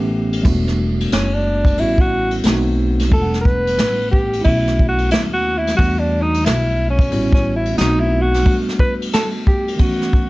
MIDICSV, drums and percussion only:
0, 0, Header, 1, 2, 480
1, 0, Start_track
1, 0, Tempo, 666667
1, 330, Time_signature, 4, 2, 24, 8
1, 7413, End_track
2, 0, Start_track
2, 0, Title_t, "Drums"
2, 235, Note_on_c, 9, 51, 53
2, 307, Note_off_c, 9, 51, 0
2, 323, Note_on_c, 9, 49, 76
2, 324, Note_on_c, 9, 36, 96
2, 395, Note_off_c, 9, 49, 0
2, 396, Note_off_c, 9, 36, 0
2, 486, Note_on_c, 9, 38, 31
2, 558, Note_off_c, 9, 38, 0
2, 723, Note_on_c, 9, 51, 54
2, 795, Note_off_c, 9, 51, 0
2, 806, Note_on_c, 9, 44, 57
2, 806, Note_on_c, 9, 51, 75
2, 814, Note_on_c, 9, 38, 114
2, 878, Note_off_c, 9, 44, 0
2, 878, Note_off_c, 9, 51, 0
2, 886, Note_off_c, 9, 38, 0
2, 1186, Note_on_c, 9, 36, 84
2, 1195, Note_on_c, 9, 51, 49
2, 1258, Note_off_c, 9, 36, 0
2, 1267, Note_off_c, 9, 51, 0
2, 1278, Note_on_c, 9, 51, 67
2, 1350, Note_off_c, 9, 51, 0
2, 1426, Note_on_c, 9, 36, 82
2, 1498, Note_off_c, 9, 36, 0
2, 1660, Note_on_c, 9, 51, 52
2, 1732, Note_off_c, 9, 51, 0
2, 1752, Note_on_c, 9, 44, 43
2, 1752, Note_on_c, 9, 51, 66
2, 1773, Note_on_c, 9, 38, 108
2, 1824, Note_off_c, 9, 44, 0
2, 1824, Note_off_c, 9, 51, 0
2, 1845, Note_off_c, 9, 38, 0
2, 2155, Note_on_c, 9, 51, 53
2, 2163, Note_on_c, 9, 38, 29
2, 2227, Note_off_c, 9, 51, 0
2, 2235, Note_off_c, 9, 38, 0
2, 2241, Note_on_c, 9, 51, 58
2, 2244, Note_on_c, 9, 36, 100
2, 2313, Note_off_c, 9, 51, 0
2, 2316, Note_off_c, 9, 36, 0
2, 2402, Note_on_c, 9, 38, 34
2, 2474, Note_off_c, 9, 38, 0
2, 2485, Note_on_c, 9, 36, 90
2, 2557, Note_off_c, 9, 36, 0
2, 2642, Note_on_c, 9, 51, 59
2, 2714, Note_off_c, 9, 51, 0
2, 2725, Note_on_c, 9, 44, 54
2, 2725, Note_on_c, 9, 51, 76
2, 2733, Note_on_c, 9, 38, 104
2, 2797, Note_off_c, 9, 44, 0
2, 2797, Note_off_c, 9, 51, 0
2, 2805, Note_off_c, 9, 38, 0
2, 2973, Note_on_c, 9, 36, 80
2, 3045, Note_off_c, 9, 36, 0
2, 3118, Note_on_c, 9, 51, 52
2, 3190, Note_off_c, 9, 51, 0
2, 3198, Note_on_c, 9, 51, 71
2, 3208, Note_on_c, 9, 36, 82
2, 3270, Note_off_c, 9, 51, 0
2, 3280, Note_off_c, 9, 36, 0
2, 3364, Note_on_c, 9, 38, 31
2, 3436, Note_off_c, 9, 38, 0
2, 3451, Note_on_c, 9, 36, 71
2, 3523, Note_off_c, 9, 36, 0
2, 3587, Note_on_c, 9, 51, 49
2, 3659, Note_off_c, 9, 51, 0
2, 3677, Note_on_c, 9, 44, 47
2, 3677, Note_on_c, 9, 51, 70
2, 3697, Note_on_c, 9, 38, 97
2, 3749, Note_off_c, 9, 44, 0
2, 3749, Note_off_c, 9, 51, 0
2, 3769, Note_off_c, 9, 38, 0
2, 4082, Note_on_c, 9, 51, 52
2, 4090, Note_on_c, 9, 38, 36
2, 4154, Note_off_c, 9, 51, 0
2, 4162, Note_off_c, 9, 38, 0
2, 4165, Note_on_c, 9, 51, 62
2, 4168, Note_on_c, 9, 36, 86
2, 4237, Note_off_c, 9, 51, 0
2, 4240, Note_off_c, 9, 36, 0
2, 4565, Note_on_c, 9, 51, 60
2, 4637, Note_off_c, 9, 51, 0
2, 4649, Note_on_c, 9, 44, 55
2, 4649, Note_on_c, 9, 51, 78
2, 4657, Note_on_c, 9, 38, 113
2, 4721, Note_off_c, 9, 44, 0
2, 4721, Note_off_c, 9, 51, 0
2, 4729, Note_off_c, 9, 38, 0
2, 5031, Note_on_c, 9, 36, 96
2, 5042, Note_on_c, 9, 51, 52
2, 5103, Note_off_c, 9, 36, 0
2, 5114, Note_off_c, 9, 51, 0
2, 5123, Note_on_c, 9, 51, 72
2, 5195, Note_off_c, 9, 51, 0
2, 5274, Note_on_c, 9, 36, 86
2, 5292, Note_on_c, 9, 38, 30
2, 5346, Note_off_c, 9, 36, 0
2, 5364, Note_off_c, 9, 38, 0
2, 5510, Note_on_c, 9, 51, 55
2, 5582, Note_off_c, 9, 51, 0
2, 5601, Note_on_c, 9, 44, 49
2, 5601, Note_on_c, 9, 51, 58
2, 5622, Note_on_c, 9, 38, 100
2, 5673, Note_off_c, 9, 44, 0
2, 5673, Note_off_c, 9, 51, 0
2, 5694, Note_off_c, 9, 38, 0
2, 6004, Note_on_c, 9, 51, 57
2, 6011, Note_on_c, 9, 38, 34
2, 6076, Note_off_c, 9, 51, 0
2, 6083, Note_off_c, 9, 38, 0
2, 6087, Note_on_c, 9, 51, 66
2, 6090, Note_on_c, 9, 36, 97
2, 6159, Note_off_c, 9, 51, 0
2, 6162, Note_off_c, 9, 36, 0
2, 6254, Note_on_c, 9, 38, 33
2, 6326, Note_off_c, 9, 38, 0
2, 6331, Note_on_c, 9, 36, 92
2, 6403, Note_off_c, 9, 36, 0
2, 6492, Note_on_c, 9, 51, 60
2, 6564, Note_off_c, 9, 51, 0
2, 6574, Note_on_c, 9, 44, 55
2, 6574, Note_on_c, 9, 51, 78
2, 6582, Note_on_c, 9, 38, 116
2, 6646, Note_off_c, 9, 44, 0
2, 6646, Note_off_c, 9, 51, 0
2, 6654, Note_off_c, 9, 38, 0
2, 6818, Note_on_c, 9, 36, 89
2, 6890, Note_off_c, 9, 36, 0
2, 6969, Note_on_c, 9, 51, 48
2, 7041, Note_off_c, 9, 51, 0
2, 7047, Note_on_c, 9, 51, 71
2, 7052, Note_on_c, 9, 36, 90
2, 7119, Note_off_c, 9, 51, 0
2, 7124, Note_off_c, 9, 36, 0
2, 7210, Note_on_c, 9, 38, 30
2, 7282, Note_off_c, 9, 38, 0
2, 7295, Note_on_c, 9, 36, 80
2, 7367, Note_off_c, 9, 36, 0
2, 7413, End_track
0, 0, End_of_file